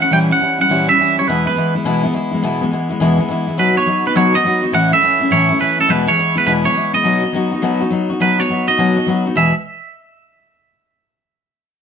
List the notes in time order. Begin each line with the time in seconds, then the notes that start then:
0.00 A3 C#4 E4 F#5
0.11 A#2 E3 G3 C#4 E4 G5
0.30 G3 C#4 E4 F#5
0.40 E3 G3 C#4 E4
0.58 G3 C#4 E4 F#5
0.69 A#2 E3 G3 C#4 E4
0.88 G3 C#4 E4 E5
0.98 E3 G3 C#4 E4
1.17 G3 C#4 E4 C#5
1.27 E2 B2 E3 G#3 B3 E4 B4
1.46 E3 G#3 B3 E4 B4
1.56 E3 G#3 B3 E4
1.75 E3 G#3 B3 E4
1.84 E2 B2 E3 G#3 B3 E4
2.03 E3 G#3 B3 E4
2.13 E3 G#3 B3 E4
2.31 E3 G#3 B3 E4
2.42 E2 B2 E3 G#3 B3 E4
2.61 E3 G#3 B3 E4
2.71 E3 G#3 B3 E4
2.89 E3 G#3 B3 E4
3.00 E2 B2 E3 G#3 B3 E4
3.18 E3 G#3 B3 E4
3.28 E3 G#3 B3 E4
3.47 E3 G#3 B3 E4
3.57 B2 F#3 B3 D#4 F#4 B4
3.76 B3 D#4 F#4 C#5
3.86 F#3 B3 D#4 F#4
4.05 B3 D#4 F#4 B4
4.15 B2 F#3 B3 D#4 F#4 C#5
4.34 B3 D#4 F#4 D#5
4.44 F#3 B3 D#4 F#4
4.62 B3 D#4 F#4
4.72 A2 E3 A3 C#4 E4 F#5
4.91 A3 C#4 E4 E5
5.01 E3 A3 C#4 E4
5.20 A3 C#4 E4
5.31 A2 E3 A3 C#4 E4 C#5
5.49 A3 C#4 E4
5.59 E3 A3 C#4 E4 B4
5.77 A3 C#4 E4 A4
5.88 E2 B2 E3 G#3 B3 E4 B4
6.07 E3 G#3 E4 C#5
6.17 E3 G#3 B3 E4
6.36 E3 G#3 B3 E4 B4
6.46 E2 B2 E3 G#3 B3 E4 B4
6.65 E3 G#3 B3 E4 C#5
6.75 E3 G#3 B3 E4
6.94 E3 G#3 B3 E4 D#5
7.04 B2 F#3 B3 D#4 F#4
7.23 B3 D#4 F#4
7.33 F#3 B3 D#4 F#4
7.51 B3 D#4 F#4
7.62 B2 F#3 B3 D#4 F#4
7.80 B3 D#4 F#4
7.91 F#3 B3 D#4 F#4
8.09 B3 D#4 F#4
8.20 B2 F#3 B3 D#4 F#4 B4
8.38 B3 D#4 F#4 C#5
8.49 F#3 B3 D#4 F#4
8.68 B3 D#4 F#4 D#5
8.78 B2 F#3 B3 D#4 F#4
8.96 B3 D#4 F#4
9.07 F#3 B3 D#4 F#4
9.26 B3 D#4 F#4
9.35 E2 B2 E3 G#3 B3 G#4 E5